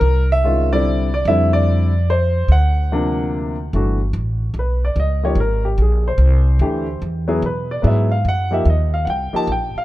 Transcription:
X:1
M:3/4
L:1/8
Q:"Swing" 1/4=146
K:Clyd
V:1 name="Grand piano"
_B e2 d2 d | e d3 c2 | f4 z2 | z4 B d |
^d ^c _B G ^G =c- | c4 z2 | B d e =f ^f e | _e =f [^fg] a g =f |]
V:2 name="Grand piano"
z2 [_E,_A,^C=F] [D,G,=C=E]2 z | [D,G,CE]3 z3 | z2 [C,^E,^A,D]3 z | [E,A,DF] z4 z |
z [^E,_B,^DG] z4 | z2 [E,A,DG] z2 [F,B,E_A] | z2 [F,B,E^G] z2 [=F,_B,_E=G] | z3 [=F,_B,_EG] z2 |]
V:3 name="Upright bass" clef=bass
C,,6 | =F,,6 | D,,6 | G,,,2 A,,,2 B,,,2 |
^C,,2 ^G,,,2 _B,,,2 | C,,2 D,,2 E,,2 | B,,2 ^G,,2 F,,2 | _E,,2 C,, z _B,,, z |]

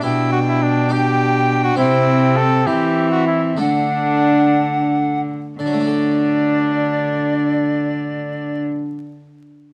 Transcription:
X:1
M:6/8
L:1/16
Q:3/8=61
K:Dmix
V:1 name="Recorder"
g6 g6 | g6 e6 | f8- f2 z2 | d12- |
d12 |]
V:2 name="Cornet"
E2 F E D2 G4- G F | E4 A2 G3 F E2 | D8- D2 z2 | D12- |
D12 |]
V:3 name="Viola"
D6 D6 | C6 C6 | D8- D2 z2 | D12- |
D12 |]
V:4 name="Harpsichord"
[DG]6 [DG]6 | [CG]12 | [A,D]12 | [D,F,A,DA]12- |
[D,F,A,DA]12 |]
V:5 name="Harpsichord" clef=bass
B,,12 | C,6 E,6 | D,8- D,2 z2 | z12 |
z12 |]
V:6 name="Cello" clef=bass
B,,12 | C,6 E,6 | D,8- D,2 z2 | D,12- |
D,12 |]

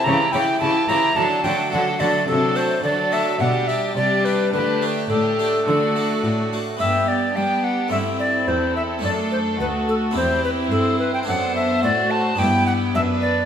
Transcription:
X:1
M:4/4
L:1/16
Q:1/4=107
K:G
V:1 name="Recorder"
_b2 g2 a2 b2 a2 g2 f2 d2 | A2 c2 d2 e2 f2 e2 d2 B2 | B3 z A8- A2 z2 | e2 d2 g2 f2 e2 d2 c2 e2 |
d2 c2 B2 A2 c2 B2 A2 B g | f2 e2 d2 a2 g2 f2 e2 d2 |]
V:2 name="Violin section"
G2 G2 G2 G2 A2 A2 A2 A2 | A4 A4 G4 G4 | G4 G4 F6 z2 | G12 A4- |
A8 G4 c4- | c8 G4 B4 |]
V:3 name="Violin section"
E2 E2 E2 E2 D2 D2 D2 D2 | D4 D4 D4 D4 | D4 D4 D6 z2 | G4 D4 E4 E4 |
D4 F4 E8 | D4 F4 E4 D4 |]
V:4 name="Harpsichord"
z2 [EG]4 [EG]2 z2 [A,DF]4 [A,DF]2 | z2 [A,DF]4 [A,DF]2 z2 [DG]4 [DG]2 | z2 [A,DG]4 [A,DG]2 z2 [A,DF]4 [A,DF]2 | [B,DG]8 [A,CE]8 |
[A,DA]8 [CEG]8 | [CDA]8 [B,DG]8 |]
V:5 name="Harpsichord" clef=bass
^C,2 C,2 C,2 C,2 D,2 D,2 D,2 D,2 | C,4 D,4 B,,4 C,4 | D,4 A,,4 D,4 A,,4 | G,,4 G,4 G,,4 E,,4 |
F,,4 D,,4 E,,4 G,,4 | F,,4 A,,4 G,,4 F,,4 |]
V:6 name="Viola section" clef=bass
E,2 E,2 E,2 E,2 F,2 F,2 F,2 F,2 | F,4 F,4 G,4 G,4 | A,4 A,4 A,6 z2 | B,4 B,4 C8 |
A,8 C8 | B,4 A,4 B,8 |]
V:7 name="Cello section" clef=bass
^C,2 C,2 C,2 C,2 D,2 D,2 D,2 D,2 | C,4 D,4 B,,4 C,4 | D,4 A,,4 D,4 A,,4 | G,,4 G,4 G,,4 E,,4 |
F,,4 D,,4 E,,4 G,,4 | F,,4 A,,4 G,,4 F,,4 |]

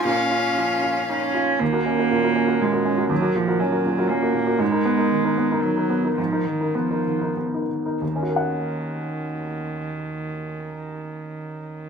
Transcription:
X:1
M:3/4
L:1/16
Q:1/4=114
K:Ebm
V:1 name="Violin"
f8- f2 z2 | z12 | z12 | z12 |
z12 | z12 | z12 |]
V:2 name="Upright piano"
B,,2 F2 F,2 F2 E2 F2 | E,, [GB] D [GB] B,, [GB] D [GB] B,, [GB] D [GB] | E,, [GB] B,, [GB] D [GB] B,, [GB] D [GB] B,, [GB] | A,, [EB] C [EB] E, [EB] C [EB] E, [EB] C [EB] |
A,, [EB] E, [EB] C [EB] E, [EB] C [EB] E, [EB] | [E,,E,DGBg]12- | [E,,E,DGBg]12 |]
V:3 name="Viola"
D8- D2 z2 | z12 | z12 | z12 |
z12 | z12 | z12 |]
V:4 name="Cello" clef=bass
D8 D4 | B,8 A,4 | G,2 F,2 G,4 B,4 | A,8 G,4 |
F,2 E,2 F,4 z4 | E,12- | E,12 |]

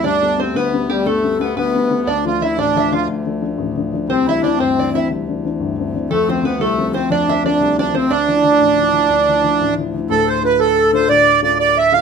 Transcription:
X:1
M:12/8
L:1/8
Q:3/8=120
K:Ddor
V:1 name="Five-string banjo"
d2 c B2 G A2 B B3 | d2 e d e f z6 | c e d c d e z6 | A c B A2 c d e d2 d c |
d8- d2 z2 | z12 |]
V:2 name="Flute"
D D z B2 G A3 B3 | D F E D3 z6 | C E2 C3 z6 | A C2 A2 C D2 D2 D C |
D8- D2 z2 | A c B A3 d2 d d e f |]
V:3 name="Accordion"
D2 C B,2 G, A,2 B, B,3 | D F E D2 F z6 | C E D C2 E z6 | A, C B, A,2 C D2 D2 D C |
D8- D2 z2 | A c B A2 c d2 d d e f |]
V:4 name="Upright piano"
G,, [G,A,B,] [G,A,B,] D,, [G,A,B,] [G,A,B,] G,, [G,A,B,] [G,A,B,] D,, [G,A,B,] [G,A,B,] | D,, [F,A,D] [F,A,D] A,,, [F,A,D] [F,A,D] D,, [F,A,D] [F,A,D] A,,, [F,A,D] [F,A,D] | C,, [E,CD] [E,CD] G,,, [E,CD] [E,CD] C,, [E,CD] [E,CD] G,,, [E,CD] [E,CD] | F,, [F,A,C] [F,A,C] C,, [F,A,C] [F,A,C] F,, [F,A,C] [F,A,C] C,, [F,A,C] [F,A,C] |
D,, [F,DE] [F,DE] A,,, [F,DE] [F,DE] D,, [F,DE] [F,DE] A,,, [F,DE] [F,DE] | [D,,,D,,]2 [A,DF]2 z [A,DF] [D,,,D,,]2 [A,DF]2 z [A,DF] |]
V:5 name="Harmonium" clef=bass
D,,12 | D,,12- | D,,12- | D,,12- |
D,,12 | z12 |]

